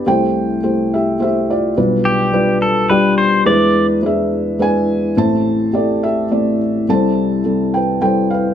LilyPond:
<<
  \new Staff \with { instrumentName = "Pedal steel guitar" } { \time 3/4 \key c \major \tempo 4 = 106 r2. | r8 g'4 a'8 b'8 c''8 | d''8. r2 r16 | r2. |
r2. | }
  \new Staff \with { instrumentName = "Felt piano" } { \time 3/4 \key c \major << { <c'' g''>4. <g' e''>8 <g' e''>8 <f' d''>8~ | <f' d''>2~ <f' d''>8 r8 | r4 <gis' e''>4 <b' gis''>4 | a''4 <a' d''>8 <g' e''>4 r8 |
<c'' a''>4. <b' g''>8 <c'' g''>8 <b' f''>8 | } \\ { <a e' g' c''>4 <a e' g' c''>4 <a e' g' c''>4 | <g d' f' b'>4 <g d' f' b'>4 <g d' f' g'>4 | <gis d' e' b'>4 <gis d' e' b'>4 <gis d' e' b'>4 | <a c' e' c''>4 <a c' e' g'>4 <a c' e' d''>4 |
<g c' e' a'>4 <g c' e' a'>4 <g c' e' a'>4 | } >> }
  \new Staff \with { instrumentName = "Felt piano" } { \clef bass \time 3/4 \key c \major <c, c>2. | <b,, b,>2. | <e, e>2. | <a,, a,>2. |
<c, c>2. | }
>>